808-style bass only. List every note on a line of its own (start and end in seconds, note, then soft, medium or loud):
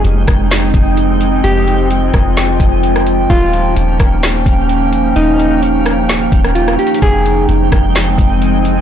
0.04 0.27 F1 loud
0.28 0.72 F1 loud
0.74 1.41 F1 loud
1.44 2.11 F1 loud
2.14 2.59 F1 loud
2.60 3.27 F1 loud
3.30 3.75 D#1 loud
3.77 3.99 D#1 loud
4.00 4.45 D#1 loud
4.46 5.13 D#1 loud
5.16 6.28 D#1 loud
6.32 6.77 D#1 loud
7.02 7.47 F1 loud
7.49 7.71 F1 loud
7.72 8.17 F1 loud
8.18 8.81 F1 loud